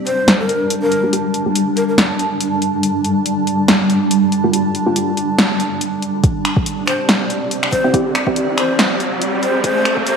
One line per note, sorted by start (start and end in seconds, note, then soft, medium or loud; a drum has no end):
0.00 6.20 G3 medium
0.00 6.19 D4 medium
0.00 6.19 A5 medium
0.06 0.37 C5 medium
0.06 closed hi-hat medium
0.28 snare loud
0.28 closed hi-hat medium
0.39 0.70 A#4 medium
0.49 closed hi-hat medium
0.70 closed hi-hat medium
0.82 1.13 A#4 loud
0.92 closed hi-hat medium
1.03 1.09 A#3 medium
1.03 1.09 F4 medium
1.03 1.09 G4 medium
1.13 1.20 A#3 medium
1.13 1.20 F4 medium
1.13 1.20 G4 loud
1.13 closed hi-hat medium
1.34 closed hi-hat medium
1.46 1.56 A#3 medium
1.46 1.56 F4 medium
1.46 1.56 G4 medium
1.55 closed hi-hat medium
1.77 1.84 A#4 medium
1.77 closed hi-hat medium
1.88 1.95 A#4 medium
1.98 snare loud
1.98 closed hi-hat medium
2.19 closed hi-hat medium
2.41 closed hi-hat medium
2.62 closed hi-hat medium
2.83 closed hi-hat medium
3.04 closed hi-hat medium
3.26 closed hi-hat medium
3.47 closed hi-hat medium
3.68 snare loud
3.68 closed hi-hat medium
3.90 closed hi-hat medium
4.11 closed hi-hat medium
4.32 closed hi-hat medium
4.44 4.50 A#3 medium
4.44 4.50 F4 medium
4.44 4.50 G4 medium
4.53 closed hi-hat medium
4.75 closed hi-hat medium
4.86 4.96 A#3 medium
4.86 4.96 F4 medium
4.86 4.96 G4 medium
4.96 closed hi-hat medium
5.17 closed hi-hat medium
5.39 snare loud
5.39 closed hi-hat medium
5.60 closed hi-hat medium
5.81 closed hi-hat medium
6.02 closed hi-hat medium
6.24 10.17 C4 medium
6.24 10.17 G4 medium
6.24 9.61 D5 medium
6.24 kick loud
6.24 closed hi-hat medium
6.24 riser medium
6.45 finger snap medium
6.45 closed hi-hat medium
6.57 kick loud
6.66 closed hi-hat medium
6.87 7.07 C5 medium
6.87 finger snap medium
6.87 closed hi-hat medium
7.09 snare loud
7.09 closed hi-hat medium
7.30 closed hi-hat medium
7.51 closed hi-hat medium
7.63 finger snap medium
7.72 7.92 C5 medium
7.72 kick medium
7.72 closed hi-hat medium
7.84 7.90 C4 medium
7.84 7.90 E4 medium
7.84 7.90 G4 medium
7.94 8.01 C4 medium
7.94 8.01 E4 medium
7.94 8.01 G4 loud
7.94 kick loud
7.94 closed hi-hat medium
8.15 finger snap medium
8.15 closed hi-hat medium
8.27 8.37 C4 medium
8.27 8.37 E4 medium
8.27 8.37 G4 medium
8.27 kick loud
8.36 closed hi-hat medium
8.57 8.77 C5 medium
8.57 finger snap medium
8.57 closed hi-hat medium
8.79 snare loud
8.79 closed hi-hat medium
9.00 closed hi-hat medium
9.22 closed hi-hat medium
9.43 9.62 C5 medium
9.43 closed hi-hat soft
9.64 10.17 C5 medium
9.64 9.95 C5 loud
9.64 kick loud
9.64 closed hi-hat medium
9.85 finger snap medium
9.85 closed hi-hat medium
9.97 kick medium
10.07 10.17 C5 medium
10.07 closed hi-hat medium